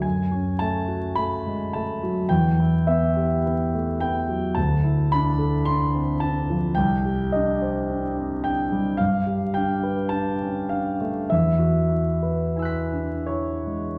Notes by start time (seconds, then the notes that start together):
0.02 F#2 G#5
0.32 C#4
0.59 A3 A5
0.88 F#4
1.15 A3 B5
1.46 G#3
1.73 A3 A5
2.03 F#3
2.29 E2 G5
2.60 E4
2.87 B3 E5
3.16 G4
3.46 B3
3.74 A3
4.00 B3 G5
4.29 F#3
4.55 D2 A5
4.84 E4
5.12 D4 B5
5.38 A4
5.65 D4 C6
5.95 C4
6.20 D4 A5
6.50 F3
6.75 C2 G5
7.05 G4
7.32 D4 D#5
7.62 C5
7.90 D4
8.17 C4
8.44 D4 G5
8.72 G3
8.97 G2 F5
9.27 G4
9.54 D4 G5
9.83 B4
10.09 D4 A5
10.41 C#4
10.69 D4 F5
11.01 A3
11.30 E2 E5
11.59 F#4
11.89 E4
12.23 B4
12.56 E4 G#5 E6
12.62 F#6 B6
12.92 D4
13.26 E4 C#5
13.66 G#3